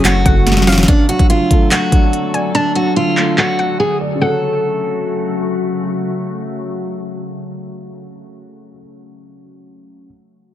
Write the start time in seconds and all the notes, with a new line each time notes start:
Already playing: F#1 F#2 C#3 F#3 A3 C#4
0.05 F#2 F#4, clap, closed hi-hat
0.25 F#1 A3 F#5, kick, closed hi-hat
0.47 snare, closed hi-hat
0.52 snare
0.57 snare
0.62 snare
0.67 C#4 F5, snare, open hi-hat
0.72 snare
0.78 snare
0.83 snare
0.88 D3 F#3 A3 D4 A4, kick, closed hi-hat
1.09 F#3 F#4, closed hi-hat
1.19 kick, closed hi-hat
1.30 D3 F4, closed hi-hat
1.51 A3, kick, closed hi-hat
1.71 D3 F#4, clap, closed hi-hat
1.92 D4, kick, closed hi-hat
2.13 closed hi-hat
2.34 D5 G#5, closed hi-hat
2.55 D3 D4 A5, closed hi-hat
2.75 F#3 F#4, closed hi-hat
2.96 D3 F4, closed hi-hat
3.17 A3, clap, closed hi-hat
3.38 D3 F#4, clap, closed hi-hat
3.58 D4 F#5, closed hi-hat
3.80 G#4
4.01 D5
4.15 C#3
4.19 C#3 F#3 A3 F#4 A4 F#5
4.27 C#4